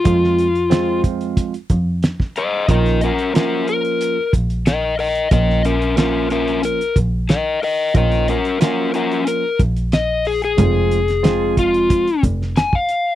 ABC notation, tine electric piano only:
X:1
M:4/4
L:1/16
Q:1/4=91
K:Bbdor
V:1 name="Tine electric piano"
[F,A,CF]2 z2 [F,A,CF]4- [F,A,CF] z6 z | [F,B,DF]2 z2 [F,B,DF]4- [F,B,DF] z6 z | [F,B,DF]2 z2 [F,B,DF]4- [F,B,DF] z6 z | [F,B,DF]2 z2 [F,B,DF]4- [F,B,DF] z6 z |
[F,A,CF]2 z2 [F,A,CF]4- [F,A,CF] z6 z |]